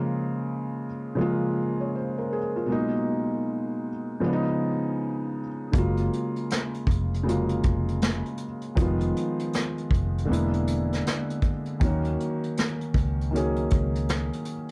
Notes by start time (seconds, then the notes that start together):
Already playing: C#3 F3 G#3 A#3 F4
1.15 C#3 F3 G#3
1.19 A#3 F4
1.80 C#5
1.95 C5
2.18 A#4
2.33 G#4
2.56 F4
2.66 B2 F#3 G#3
2.71 A#3 D#4
4.20 C#3 F3 G#3
4.24 B3 D4
4.33 D#4
5.72 F#1 C#3 F#3 G#3, kick, closed hi-hat
5.76 A#3 F4
5.97 closed hi-hat
6.13 closed hi-hat
6.36 closed hi-hat
6.50 snare, closed hi-hat
6.74 closed hi-hat
6.87 F1, kick, closed hi-hat
7.14 closed hi-hat
7.24 C#3 F#3 G#3
7.28 A#3 F4, closed hi-hat
7.49 closed hi-hat
7.63 F1, kick, closed hi-hat
7.88 closed hi-hat
8.02 snare, closed hi-hat
8.26 closed hi-hat
8.37 closed hi-hat
8.62 closed hi-hat
8.75 F1 D#3 F3 G3, kick, closed hi-hat
8.80 B3 F4
8.84 G#3
9.01 closed hi-hat
9.16 closed hi-hat
9.39 closed hi-hat
9.53 snare, closed hi-hat
9.78 closed hi-hat
9.91 F1, kick, closed hi-hat
10.18 closed hi-hat
10.25 D3 G#3 A#3
10.30 E1 B3 E4, closed hi-hat
10.53 closed hi-hat
10.67 closed hi-hat
10.93 snare, closed hi-hat
11.07 snare, closed hi-hat
11.30 closed hi-hat
11.42 kick, closed hi-hat
11.65 closed hi-hat
11.80 D#2 D#3 F#3 A#3, kick, closed hi-hat
11.84 C#4 F#4
12.04 closed hi-hat
12.20 closed hi-hat
12.44 closed hi-hat
12.57 snare, closed hi-hat
12.81 closed hi-hat
12.94 C#2, kick, closed hi-hat
13.21 closed hi-hat
13.31 D#3 F#3 A#3
13.35 C#4 G#4, closed hi-hat
13.56 closed hi-hat
13.70 C#2, kick, closed hi-hat
13.95 closed hi-hat
14.09 snare, closed hi-hat
14.33 closed hi-hat
14.45 closed hi-hat